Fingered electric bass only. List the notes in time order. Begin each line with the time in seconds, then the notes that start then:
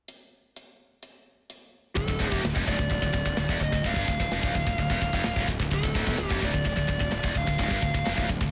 1.97 D1
2.08 D1
2.20 D1
2.32 E1
2.44 D1
2.56 F1
2.67 D1
2.79 D1
2.91 D1
3.02 D1
3.14 D1
3.26 D1
3.37 D1
3.49 E1
3.61 D1
3.72 D1
3.85 D1
3.96 G1
4.08 D1
4.20 D1
4.31 F1
4.43 D1
4.55 D1
4.67 D1
4.78 D1
4.90 E1
5.02 D1
5.13 F1
5.25 D1
5.36 D1
5.49 D1
5.60 D1
5.72 D1
5.83 D1
5.95 D1
6.07 E1
6.19 D1
6.30 F1
6.43 D1
6.54 D1
6.65 D1
6.77 D1
6.89 D1
7.00 D1
7.13 D1
7.24 E1
7.35 D1
7.48 D1
7.59 D1
7.71 G1
7.82 D1
7.94 D1
8.07 F1
8.18 D1
8.30 D1
8.41 D1